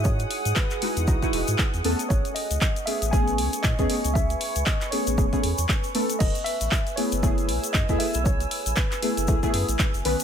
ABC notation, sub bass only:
X:1
M:4/4
L:1/16
Q:"Swing 16ths" 1/4=117
K:F#dor
V:1 name="Sub bass" clef=bass
G,,2 z G,, z3 E,, B,,, z E,,, G,, z E,, E,, z | A,,, z2 C,, z3 A,,,3 C,, z A,, E,, z C,,- | C,,2 z C,, z3 A,,, E,,, z E,, E,, z4 | F,,, z2 A,,, z3 F,,,3 B,,, z F,, E,, z B,,,- |
B,,,2 z A,,, z3 F,,, C,, z F,, A,,, z F,,, B,,, z |]